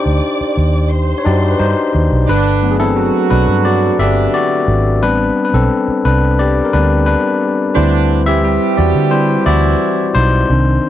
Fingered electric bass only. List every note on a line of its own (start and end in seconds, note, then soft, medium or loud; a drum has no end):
0.06 0.19 D2 medium
0.41 muted fingered electric bass stroke soft
0.57 1.13 D#2 medium
1.26 1.54 F#2 medium
1.60 1.74 G2 loud
1.95 2.08 D#2 medium
2.12 2.25 B1 medium
2.29 3.10 G1 loud
3.31 3.45 B1 loud
3.48 3.89 G2 loud
3.99 4.27 G1 medium
4.68 5.02 G#1 loud
5.02 5.29 A1 loud
5.54 5.67 B1 medium
5.88 muted fingered electric bass stroke medium
6.05 6.60 C2 loud
6.74 7.15 D2 medium
7.77 8.57 D2 loud
8.78 8.92 E2 loud
8.95 9.37 D3 medium
9.46 9.74 D2 medium
10.15 10.43 B1 medium
10.50 10.77 C2 loud